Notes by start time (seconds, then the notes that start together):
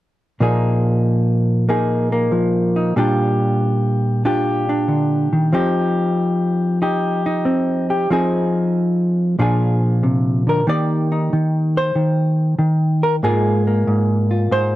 0.40 A#2 F3 A#3 D#4 G#4
1.69 A#3 D#4 G#4
2.12 A#3
2.32 F3
2.76 D#4
2.96 A#2 G3 D4 F4 G4
4.25 D4 F4 G4
4.69 D4
4.88 D3
5.33 D#3
5.53 F3 C4 D#4 G4
6.82 D#4 G4
7.26 D#4
7.45 C4
7.90 G4
8.10 F3 C4 D#4 G#4
9.39 A#2 F3 D4 F4 G#4
10.03 C3
10.47 D3 A#4
10.67 D#3 A#3 D#4 G4 D5
11.12 D#4
11.33 D#3
11.77 C5
11.95 D#3
12.59 D#3
13.03 A#4
13.23 G#2 G#3 A#3 F4 G#4
13.67 A#3
13.87 G#2
14.31 F4
14.51 G#2 C5